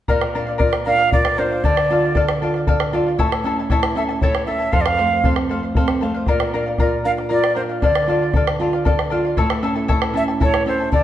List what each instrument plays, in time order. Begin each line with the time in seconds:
0.08 nylon-string guitar A#2, charango A#4 D5 F5, bombo rim, bombo low
0.21 bombo rim
0.35 nylon-string guitar D4, charango A#4 D5 F5
0.47 charango D5 F5
0.58 nylon-string guitar F4, charango A#4 D5 F5, bombo rim, bombo low
0.73 bombo rim
0.86 nylon-string guitar D4, charango A#4 D5 F5, quena F5
0.99 charango D5 F5, bombo rim
1.12 nylon-string guitar F4, charango A#4 D5 F5, quena D5, bombo low
1.25 bombo rim
1.38 nylon-string guitar D4, charango A#4 D5 F5, quena C5
1.52 charango D5 F5
1.64 nylon-string guitar D3, charango A4 D5 F5, quena D5, bombo rim, bombo low
1.77 bombo rim
1.91 nylon-string guitar F4, charango A4 D5 F5
2.04 charango D5 F5
2.15 nylon-string guitar A4, charango A4 D5 F5, bombo rim, bombo low
2.29 bombo rim
2.42 nylon-string guitar F4, charango A4 D5 F5
2.54 charango D5 F5, bombo rim
2.67 nylon-string guitar A4, charango A4 D5 F5, bombo low
2.80 bombo rim
2.93 nylon-string guitar F4, charango A4 D5 F5
3.07 charango D5 F5
3.18 nylon-string guitar A2, charango E4 A4 C#5 E5 A5, bombo rim, bombo low
3.32 bombo rim
3.44 nylon-string guitar C#4, charango E4 A4 E5 A5
3.59 charango E4 A4 A5
3.70 nylon-string guitar E4, charango E4 A4 C#5 E5 A5, bombo rim, bombo low
3.83 bombo rim
3.95 nylon-string guitar C#4, charango E4 A4 E5 A5, quena E5
4.09 charango E4 A4 A5, bombo rim
4.21 nylon-string guitar E4, charango E4 A4 C#5 E5 A5, quena C#5, bombo low
4.35 bombo rim
4.46 nylon-string guitar C#4, charango E4 A4 E5 A5, quena E5
4.59 charango E4 A4 A5
4.72 nylon-string guitar F2, charango A4 C5 F5, quena F5, bombo low
4.81 quena D5
4.86 quena F5, bombo rim
4.97 nylon-string guitar A3, charango A4 C5 F5, bombo rim
5.10 charango C5 F5
5.24 nylon-string guitar C4, charango A4 C5 F5, bombo rim, bombo low
5.36 bombo rim
5.49 nylon-string guitar A3, charango A4 C5 F5
5.63 charango C5 F5
5.75 nylon-string guitar C4, charango A4 C5 F5, bombo low
5.88 bombo rim
6.01 nylon-string guitar A3, charango A4 C5 F5
6.15 charango C5 F5
6.26 nylon-string guitar A#2, charango A#4 D5 F5, bombo rim, bombo low
6.40 bombo rim
6.54 nylon-string guitar D4, charango A#4 D5 F5
6.66 charango D5 F5
6.78 nylon-string guitar F4, charango A#4 D5 F5, bombo rim, bombo low
7.04 nylon-string guitar D4, charango A#4 D5 F5, quena F5
7.17 charango D5 F5, bombo rim
7.29 nylon-string guitar F4, charango A#4 D5 F5, quena D5
7.44 bombo rim
7.55 nylon-string guitar D4, charango A#4 D5 F5, quena C5
7.69 charango D5 F5
7.81 nylon-string guitar D3, charango A4 D5 F5, quena D5, bombo rim, bombo low
7.95 bombo rim
8.08 nylon-string guitar F4, charango A4 D5 F5
8.22 charango D5 F5
8.34 nylon-string guitar A4, charango A4 D5 F5, bombo rim, bombo low
8.47 bombo rim
8.60 nylon-string guitar F4, charango A4 D5 F5
8.73 charango D5 F5, bombo rim
8.85 charango A4 D5 F5, nylon-string guitar A4, bombo low
8.99 bombo rim
9.10 nylon-string guitar F4, charango A4 D5 F5
9.25 charango D5 F5
9.37 nylon-string guitar A2, charango E4 A4 C#5 E5 A5, bombo rim, bombo low
9.50 bombo rim
9.63 nylon-string guitar C#4, charango E4 A4 E5 A5
9.75 charango E4 A4 A5
9.88 nylon-string guitar E4, charango E4 A4 C#5 E5 A5, bombo rim, bombo low
10.02 bombo rim
10.14 nylon-string guitar C#4, charango E4 A4 E5 A5, quena E5
10.28 charango E4 A4 A5, bombo rim
10.40 nylon-string guitar E4, charango E4 A4 C#5 E5 A5, quena C#5, bombo low
10.54 bombo rim
10.66 nylon-string guitar C#4, charango E4 A4 E5 A5, quena C5
10.80 charango E4 A4 A5
10.92 nylon-string guitar D3, charango A4 D5 F5, quena D5, bombo low